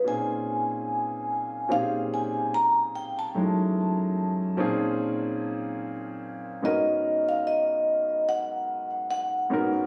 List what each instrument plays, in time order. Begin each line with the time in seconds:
0.04 grand piano A#2 C4 C#4 D#4 F4 G#4, vibraphone G#5
1.69 grand piano A#2 C4 C#4 D#4 F4 G4, vibraphone F5
1.78 grand piano G#4
2.14 vibraphone G#5
2.54 vibraphone A#5
2.95 vibraphone G5
3.19 vibraphone A5
3.34 grand piano F#2 G#3 A3 C#4 D#4 E4
4.57 grand piano A#2 C4 C#4 D#4 F4 G#4
6.62 grand piano G#2 B3 C#4 D#4 F#4 A#4, vibraphone D#5
7.29 vibraphone F5
7.47 vibraphone D#5
8.29 vibraphone F#5
9.11 vibraphone F#5
9.50 grand piano G#2 B3 C#4 D#4 F#4 A#4